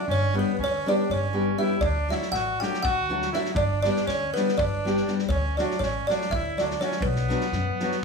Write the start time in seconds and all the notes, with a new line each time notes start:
0.08 G1 C#4 C#5
0.34 G3 B3 D4 G4
0.39 B4
0.58 D2 C#4
0.64 C#5
0.86 G3 B3 D4 G4 D5
1.10 G1 C#4 C#5
1.33 G3 B3 D4 G4
1.58 G3 B3 D4 E4 G4 E5
1.81 D2 D4 D5, kick
2.09 F#3 A3 D4 E4 F#4 E5, snare
2.22 snare
2.32 A1 F#4 F#5, snare
2.60 F#3 A3 D4 F#4 G4 G5, snare
2.74 snare
2.83 D2 F#4 F#5, kick
3.10 F#3 A3 D4 F#4
3.22 snare
3.32 F#3 A3 D4 E4 F#4 E5, snare
3.45 snare
3.54 G1 D4 D5, kick
3.82 G3 B3 D4 D5, snare
3.86 G4
3.96 snare
4.05 D2 C#4 C#5, snare
4.33 G3 B3 B4, snare
4.37 D4 G4
4.48 snare
4.58 G1 D4 D5, kick
4.85 G3 B3 D4 G4, snare
4.97 snare
5.07 G3 B3 D4 G4, snare
5.19 snare
5.28 D2 C#4 C#5, kick
5.57 F#3 A3 D4 F#4 D5, snare
5.71 snare
5.79 A1 C#4 C#5, snare
6.07 F#3 A3 D4 F#4 D5, snare
6.21 snare
6.30 D2 E4 E5, kick
6.57 F#3 A3 D4 F#4 D5, snare
6.71 snare
6.79 F#3 A3 D4 F#4 C#5, snare
6.84 C#4
6.91 snare
7.01 B1 B4, kick
7.06 B3
7.16 snare
7.28 F#3 B3 D4 F#4, snare
7.41 snare
7.52 F#2, snare
7.79 F#3 B3 D4 F#4, snare
7.91 snare